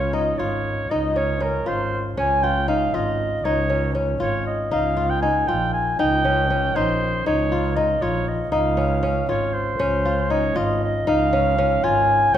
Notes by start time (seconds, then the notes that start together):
Already playing: C#2 C#4 F4 C#5
0.13 D#4 D#5
0.38 G#1 F4 C#5
0.90 C#2 D#4 D#5
1.16 C#4 C#5
1.40 C#4 A#4
1.66 G#1 F4 C5
2.17 C#2 C#4 G#5
2.43 F4 G5
2.68 D#4 F5
2.93 G#1 F4 D#5
3.43 C#2 D#4 C#5
3.70 C#4
3.95 C#4
4.20 G#1 F4 C#5
4.47 D#5
4.71 C#2 D#4 F5
4.97 F4
5.10 G5
5.22 D#4 G#5
5.47 A#1 F4 G5
5.74 G#5
5.99 C#2 D#4 G5
6.25 C#4
6.50 C#4
6.76 A#1 D#4 C5
7.26 C#2 D#4 C#5
7.52 F4
7.76 D#4 D#5
8.02 A#1 F4 C#5
8.28 D#5
8.51 C#2 D#4 F5
8.77 C#4
9.03 C#4
9.28 G#1 F4 C#5
9.54 C5
9.79 C#2 C#4
10.05 F4
10.30 D#4 C#5
10.56 G#1 F4 D#5
10.84 D#5
11.07 C#2 D#4 F5
11.33 C#4
11.58 C#4
11.83 G#1 F4 G#5
12.33 C#2 C#4 G5